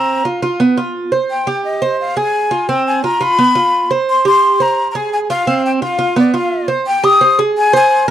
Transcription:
0, 0, Header, 1, 3, 480
1, 0, Start_track
1, 0, Key_signature, -3, "minor"
1, 0, Tempo, 348230
1, 1782, Time_signature, 4, 2, 24, 8
1, 11172, End_track
2, 0, Start_track
2, 0, Title_t, "Flute"
2, 0, Program_c, 0, 73
2, 0, Note_on_c, 0, 82, 81
2, 356, Note_off_c, 0, 82, 0
2, 1800, Note_on_c, 0, 79, 80
2, 2238, Note_off_c, 0, 79, 0
2, 2270, Note_on_c, 0, 75, 74
2, 2713, Note_off_c, 0, 75, 0
2, 2764, Note_on_c, 0, 77, 85
2, 2996, Note_on_c, 0, 80, 94
2, 3016, Note_off_c, 0, 77, 0
2, 3709, Note_on_c, 0, 79, 87
2, 3730, Note_off_c, 0, 80, 0
2, 3946, Note_off_c, 0, 79, 0
2, 3957, Note_on_c, 0, 80, 82
2, 4174, Note_off_c, 0, 80, 0
2, 4187, Note_on_c, 0, 82, 89
2, 4447, Note_on_c, 0, 83, 110
2, 4468, Note_off_c, 0, 82, 0
2, 5395, Note_off_c, 0, 83, 0
2, 5648, Note_on_c, 0, 84, 99
2, 5860, Note_off_c, 0, 84, 0
2, 5890, Note_on_c, 0, 84, 105
2, 6367, Note_on_c, 0, 82, 99
2, 6388, Note_off_c, 0, 84, 0
2, 6764, Note_off_c, 0, 82, 0
2, 6772, Note_on_c, 0, 82, 67
2, 6844, Note_on_c, 0, 80, 85
2, 6865, Note_off_c, 0, 82, 0
2, 7059, Note_off_c, 0, 80, 0
2, 7067, Note_on_c, 0, 80, 80
2, 7150, Note_off_c, 0, 80, 0
2, 7311, Note_on_c, 0, 77, 91
2, 7754, Note_off_c, 0, 77, 0
2, 7798, Note_on_c, 0, 79, 85
2, 7881, Note_off_c, 0, 79, 0
2, 8038, Note_on_c, 0, 77, 77
2, 8478, Note_off_c, 0, 77, 0
2, 8525, Note_on_c, 0, 74, 80
2, 8738, Note_off_c, 0, 74, 0
2, 8759, Note_on_c, 0, 77, 79
2, 9198, Note_off_c, 0, 77, 0
2, 9469, Note_on_c, 0, 79, 96
2, 9709, Note_on_c, 0, 87, 107
2, 9729, Note_off_c, 0, 79, 0
2, 10186, Note_off_c, 0, 87, 0
2, 10442, Note_on_c, 0, 80, 94
2, 10656, Note_off_c, 0, 80, 0
2, 10699, Note_on_c, 0, 80, 91
2, 11128, Note_off_c, 0, 80, 0
2, 11172, End_track
3, 0, Start_track
3, 0, Title_t, "Cuban tres"
3, 0, Program_c, 1, 25
3, 0, Note_on_c, 1, 60, 73
3, 325, Note_off_c, 1, 60, 0
3, 345, Note_on_c, 1, 65, 64
3, 569, Note_off_c, 1, 65, 0
3, 585, Note_on_c, 1, 65, 73
3, 817, Note_off_c, 1, 65, 0
3, 826, Note_on_c, 1, 59, 79
3, 1057, Note_off_c, 1, 59, 0
3, 1068, Note_on_c, 1, 65, 66
3, 1531, Note_off_c, 1, 65, 0
3, 1543, Note_on_c, 1, 72, 66
3, 2008, Note_off_c, 1, 72, 0
3, 2026, Note_on_c, 1, 67, 73
3, 2490, Note_off_c, 1, 67, 0
3, 2506, Note_on_c, 1, 72, 73
3, 2970, Note_off_c, 1, 72, 0
3, 2986, Note_on_c, 1, 68, 69
3, 3450, Note_off_c, 1, 68, 0
3, 3459, Note_on_c, 1, 65, 68
3, 3694, Note_off_c, 1, 65, 0
3, 3705, Note_on_c, 1, 60, 76
3, 4170, Note_off_c, 1, 60, 0
3, 4189, Note_on_c, 1, 65, 69
3, 4403, Note_off_c, 1, 65, 0
3, 4419, Note_on_c, 1, 65, 76
3, 4654, Note_off_c, 1, 65, 0
3, 4667, Note_on_c, 1, 59, 72
3, 4898, Note_off_c, 1, 59, 0
3, 4898, Note_on_c, 1, 65, 69
3, 5366, Note_off_c, 1, 65, 0
3, 5384, Note_on_c, 1, 72, 72
3, 5850, Note_off_c, 1, 72, 0
3, 5859, Note_on_c, 1, 67, 74
3, 6327, Note_off_c, 1, 67, 0
3, 6343, Note_on_c, 1, 72, 67
3, 6809, Note_off_c, 1, 72, 0
3, 6824, Note_on_c, 1, 68, 73
3, 7290, Note_off_c, 1, 68, 0
3, 7305, Note_on_c, 1, 65, 73
3, 7537, Note_off_c, 1, 65, 0
3, 7542, Note_on_c, 1, 60, 76
3, 8009, Note_off_c, 1, 60, 0
3, 8022, Note_on_c, 1, 65, 67
3, 8234, Note_off_c, 1, 65, 0
3, 8251, Note_on_c, 1, 65, 71
3, 8490, Note_off_c, 1, 65, 0
3, 8496, Note_on_c, 1, 59, 81
3, 8732, Note_off_c, 1, 59, 0
3, 8735, Note_on_c, 1, 65, 70
3, 9205, Note_off_c, 1, 65, 0
3, 9207, Note_on_c, 1, 72, 75
3, 9448, Note_off_c, 1, 72, 0
3, 9697, Note_on_c, 1, 67, 80
3, 9932, Note_off_c, 1, 67, 0
3, 9937, Note_on_c, 1, 72, 71
3, 10173, Note_off_c, 1, 72, 0
3, 10183, Note_on_c, 1, 68, 82
3, 10648, Note_off_c, 1, 68, 0
3, 10659, Note_on_c, 1, 72, 83
3, 11126, Note_off_c, 1, 72, 0
3, 11172, End_track
0, 0, End_of_file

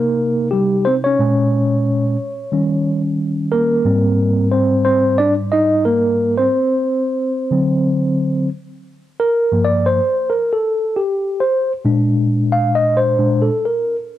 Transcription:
0, 0, Header, 1, 2, 480
1, 0, Start_track
1, 0, Tempo, 666667
1, 858, Time_signature, 4, 2, 24, 8
1, 10210, End_track
2, 0, Start_track
2, 0, Title_t, "Tine electric piano"
2, 0, Program_c, 0, 4
2, 0, Note_on_c, 0, 48, 58
2, 0, Note_on_c, 0, 58, 66
2, 0, Note_on_c, 0, 63, 63
2, 0, Note_on_c, 0, 70, 86
2, 341, Note_off_c, 0, 70, 0
2, 350, Note_off_c, 0, 58, 0
2, 367, Note_on_c, 0, 67, 83
2, 380, Note_on_c, 0, 55, 65
2, 602, Note_off_c, 0, 55, 0
2, 612, Note_on_c, 0, 72, 91
2, 619, Note_off_c, 0, 67, 0
2, 628, Note_on_c, 0, 60, 74
2, 676, Note_off_c, 0, 72, 0
2, 689, Note_off_c, 0, 60, 0
2, 749, Note_on_c, 0, 73, 92
2, 765, Note_on_c, 0, 61, 73
2, 827, Note_off_c, 0, 48, 0
2, 831, Note_off_c, 0, 63, 0
2, 858, Note_on_c, 0, 46, 59
2, 859, Note_off_c, 0, 61, 0
2, 862, Note_on_c, 0, 56, 56
2, 868, Note_on_c, 0, 61, 62
2, 1549, Note_off_c, 0, 46, 0
2, 1551, Note_off_c, 0, 56, 0
2, 1554, Note_off_c, 0, 61, 0
2, 1813, Note_on_c, 0, 51, 55
2, 1818, Note_on_c, 0, 55, 45
2, 1823, Note_on_c, 0, 61, 58
2, 2164, Note_off_c, 0, 73, 0
2, 2532, Note_on_c, 0, 70, 81
2, 2545, Note_on_c, 0, 58, 66
2, 2747, Note_off_c, 0, 51, 0
2, 2749, Note_off_c, 0, 55, 0
2, 2751, Note_off_c, 0, 61, 0
2, 2770, Note_on_c, 0, 44, 61
2, 2776, Note_on_c, 0, 55, 57
2, 2780, Note_on_c, 0, 60, 67
2, 3226, Note_off_c, 0, 70, 0
2, 3232, Note_off_c, 0, 58, 0
2, 3251, Note_on_c, 0, 72, 74
2, 3253, Note_off_c, 0, 60, 0
2, 3262, Note_on_c, 0, 60, 67
2, 3482, Note_off_c, 0, 72, 0
2, 3483, Note_off_c, 0, 60, 0
2, 3490, Note_on_c, 0, 72, 85
2, 3503, Note_on_c, 0, 60, 69
2, 3717, Note_off_c, 0, 72, 0
2, 3724, Note_off_c, 0, 60, 0
2, 3731, Note_on_c, 0, 74, 102
2, 3742, Note_on_c, 0, 62, 78
2, 3840, Note_off_c, 0, 74, 0
2, 3849, Note_off_c, 0, 62, 0
2, 3973, Note_on_c, 0, 75, 95
2, 3982, Note_on_c, 0, 63, 79
2, 4198, Note_off_c, 0, 75, 0
2, 4203, Note_off_c, 0, 63, 0
2, 4214, Note_on_c, 0, 70, 88
2, 4219, Note_on_c, 0, 58, 70
2, 4569, Note_off_c, 0, 70, 0
2, 4572, Note_off_c, 0, 58, 0
2, 4590, Note_on_c, 0, 72, 86
2, 4603, Note_on_c, 0, 60, 63
2, 4665, Note_off_c, 0, 44, 0
2, 4668, Note_off_c, 0, 55, 0
2, 5405, Note_on_c, 0, 50, 55
2, 5410, Note_off_c, 0, 60, 0
2, 5411, Note_on_c, 0, 54, 50
2, 5419, Note_on_c, 0, 60, 58
2, 6103, Note_off_c, 0, 50, 0
2, 6105, Note_off_c, 0, 72, 0
2, 6106, Note_off_c, 0, 54, 0
2, 6109, Note_off_c, 0, 60, 0
2, 6622, Note_on_c, 0, 70, 97
2, 6853, Note_on_c, 0, 43, 56
2, 6858, Note_on_c, 0, 53, 47
2, 6862, Note_on_c, 0, 58, 54
2, 6945, Note_on_c, 0, 74, 94
2, 6949, Note_off_c, 0, 70, 0
2, 7101, Note_on_c, 0, 72, 87
2, 7106, Note_off_c, 0, 74, 0
2, 7189, Note_off_c, 0, 43, 0
2, 7192, Note_off_c, 0, 53, 0
2, 7194, Note_off_c, 0, 58, 0
2, 7415, Note_on_c, 0, 70, 80
2, 7429, Note_off_c, 0, 72, 0
2, 7565, Note_off_c, 0, 70, 0
2, 7579, Note_on_c, 0, 69, 82
2, 7894, Note_on_c, 0, 67, 74
2, 7908, Note_off_c, 0, 69, 0
2, 8211, Note_on_c, 0, 72, 77
2, 8225, Note_off_c, 0, 67, 0
2, 8437, Note_off_c, 0, 72, 0
2, 8530, Note_on_c, 0, 46, 59
2, 8533, Note_on_c, 0, 56, 53
2, 8536, Note_on_c, 0, 62, 62
2, 9017, Note_on_c, 0, 77, 96
2, 9181, Note_on_c, 0, 75, 91
2, 9182, Note_off_c, 0, 77, 0
2, 9339, Note_on_c, 0, 72, 84
2, 9344, Note_off_c, 0, 75, 0
2, 9482, Note_off_c, 0, 46, 0
2, 9487, Note_off_c, 0, 56, 0
2, 9488, Note_off_c, 0, 62, 0
2, 9491, Note_on_c, 0, 46, 46
2, 9495, Note_on_c, 0, 56, 45
2, 9497, Note_on_c, 0, 62, 50
2, 9662, Note_on_c, 0, 69, 72
2, 9668, Note_off_c, 0, 72, 0
2, 9710, Note_off_c, 0, 46, 0
2, 9712, Note_off_c, 0, 56, 0
2, 9713, Note_off_c, 0, 62, 0
2, 9824, Note_off_c, 0, 69, 0
2, 9831, Note_on_c, 0, 70, 67
2, 10048, Note_off_c, 0, 70, 0
2, 10210, End_track
0, 0, End_of_file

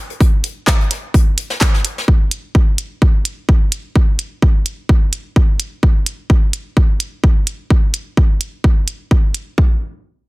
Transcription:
0, 0, Header, 1, 2, 480
1, 0, Start_track
1, 0, Tempo, 468750
1, 210, Time_signature, 4, 2, 24, 8
1, 10536, End_track
2, 0, Start_track
2, 0, Title_t, "Drums"
2, 101, Note_on_c, 9, 42, 40
2, 203, Note_off_c, 9, 42, 0
2, 208, Note_on_c, 9, 42, 74
2, 210, Note_on_c, 9, 36, 119
2, 311, Note_off_c, 9, 42, 0
2, 312, Note_off_c, 9, 36, 0
2, 450, Note_on_c, 9, 42, 85
2, 452, Note_off_c, 9, 42, 0
2, 452, Note_on_c, 9, 42, 72
2, 554, Note_off_c, 9, 42, 0
2, 690, Note_on_c, 9, 36, 112
2, 690, Note_on_c, 9, 39, 86
2, 690, Note_on_c, 9, 42, 80
2, 694, Note_on_c, 9, 38, 122
2, 792, Note_off_c, 9, 39, 0
2, 793, Note_off_c, 9, 36, 0
2, 793, Note_off_c, 9, 42, 0
2, 796, Note_off_c, 9, 38, 0
2, 828, Note_on_c, 9, 42, 42
2, 929, Note_off_c, 9, 42, 0
2, 929, Note_on_c, 9, 38, 38
2, 929, Note_on_c, 9, 42, 61
2, 930, Note_off_c, 9, 42, 0
2, 930, Note_on_c, 9, 42, 95
2, 1032, Note_off_c, 9, 38, 0
2, 1033, Note_off_c, 9, 42, 0
2, 1170, Note_on_c, 9, 36, 117
2, 1170, Note_on_c, 9, 42, 85
2, 1272, Note_off_c, 9, 42, 0
2, 1273, Note_off_c, 9, 36, 0
2, 1411, Note_on_c, 9, 42, 88
2, 1415, Note_off_c, 9, 42, 0
2, 1415, Note_on_c, 9, 42, 62
2, 1517, Note_off_c, 9, 42, 0
2, 1537, Note_on_c, 9, 38, 45
2, 1640, Note_off_c, 9, 38, 0
2, 1645, Note_on_c, 9, 42, 83
2, 1650, Note_on_c, 9, 36, 111
2, 1650, Note_on_c, 9, 39, 85
2, 1652, Note_on_c, 9, 38, 96
2, 1748, Note_off_c, 9, 42, 0
2, 1752, Note_off_c, 9, 39, 0
2, 1753, Note_off_c, 9, 36, 0
2, 1755, Note_off_c, 9, 38, 0
2, 1784, Note_on_c, 9, 38, 50
2, 1886, Note_off_c, 9, 38, 0
2, 1888, Note_on_c, 9, 42, 58
2, 1890, Note_off_c, 9, 42, 0
2, 1890, Note_on_c, 9, 42, 87
2, 1992, Note_off_c, 9, 42, 0
2, 2029, Note_on_c, 9, 38, 47
2, 2130, Note_on_c, 9, 36, 110
2, 2131, Note_off_c, 9, 38, 0
2, 2233, Note_off_c, 9, 36, 0
2, 2370, Note_on_c, 9, 42, 86
2, 2472, Note_off_c, 9, 42, 0
2, 2610, Note_on_c, 9, 36, 110
2, 2713, Note_off_c, 9, 36, 0
2, 2849, Note_on_c, 9, 42, 90
2, 2952, Note_off_c, 9, 42, 0
2, 3090, Note_on_c, 9, 36, 113
2, 3193, Note_off_c, 9, 36, 0
2, 3330, Note_on_c, 9, 42, 87
2, 3433, Note_off_c, 9, 42, 0
2, 3570, Note_on_c, 9, 36, 110
2, 3673, Note_off_c, 9, 36, 0
2, 3809, Note_on_c, 9, 42, 87
2, 3912, Note_off_c, 9, 42, 0
2, 4050, Note_on_c, 9, 36, 105
2, 4153, Note_off_c, 9, 36, 0
2, 4290, Note_on_c, 9, 42, 83
2, 4393, Note_off_c, 9, 42, 0
2, 4530, Note_on_c, 9, 36, 102
2, 4633, Note_off_c, 9, 36, 0
2, 4770, Note_on_c, 9, 42, 86
2, 4873, Note_off_c, 9, 42, 0
2, 5010, Note_on_c, 9, 36, 113
2, 5113, Note_off_c, 9, 36, 0
2, 5250, Note_on_c, 9, 42, 84
2, 5353, Note_off_c, 9, 42, 0
2, 5490, Note_on_c, 9, 36, 107
2, 5592, Note_off_c, 9, 36, 0
2, 5730, Note_on_c, 9, 42, 83
2, 5833, Note_off_c, 9, 42, 0
2, 5970, Note_on_c, 9, 36, 101
2, 6072, Note_off_c, 9, 36, 0
2, 6210, Note_on_c, 9, 42, 76
2, 6312, Note_off_c, 9, 42, 0
2, 6450, Note_on_c, 9, 36, 103
2, 6552, Note_off_c, 9, 36, 0
2, 6690, Note_on_c, 9, 42, 86
2, 6793, Note_off_c, 9, 42, 0
2, 6930, Note_on_c, 9, 36, 108
2, 7032, Note_off_c, 9, 36, 0
2, 7169, Note_on_c, 9, 42, 79
2, 7272, Note_off_c, 9, 42, 0
2, 7409, Note_on_c, 9, 36, 106
2, 7512, Note_off_c, 9, 36, 0
2, 7649, Note_on_c, 9, 42, 79
2, 7752, Note_off_c, 9, 42, 0
2, 7889, Note_on_c, 9, 36, 103
2, 7992, Note_off_c, 9, 36, 0
2, 8129, Note_on_c, 9, 42, 78
2, 8232, Note_off_c, 9, 42, 0
2, 8369, Note_on_c, 9, 36, 98
2, 8472, Note_off_c, 9, 36, 0
2, 8609, Note_on_c, 9, 42, 86
2, 8712, Note_off_c, 9, 42, 0
2, 8849, Note_on_c, 9, 36, 105
2, 8952, Note_off_c, 9, 36, 0
2, 9089, Note_on_c, 9, 42, 81
2, 9191, Note_off_c, 9, 42, 0
2, 9329, Note_on_c, 9, 36, 102
2, 9432, Note_off_c, 9, 36, 0
2, 9569, Note_on_c, 9, 42, 80
2, 9672, Note_off_c, 9, 42, 0
2, 9809, Note_on_c, 9, 36, 97
2, 9912, Note_off_c, 9, 36, 0
2, 10536, End_track
0, 0, End_of_file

